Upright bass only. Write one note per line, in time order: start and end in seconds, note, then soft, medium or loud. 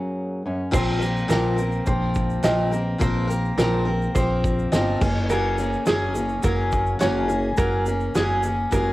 0.74 1.22 A#1 loud
1.30 1.78 A#1 loud
1.87 2.36 A#1 loud
2.44 2.92 A#1 loud
3.01 3.50 A#1 loud
3.57 4.06 A#1 loud
4.16 4.64 A#1 loud
4.72 4.97 G1 loud
5.01 5.74 F#1 loud
5.87 6.35 F#1 loud
6.44 6.92 F#1 loud
7.01 7.50 F#1 loud
7.58 8.07 F#1 loud
8.15 8.64 F#1 medium
8.72 8.93 F#1 medium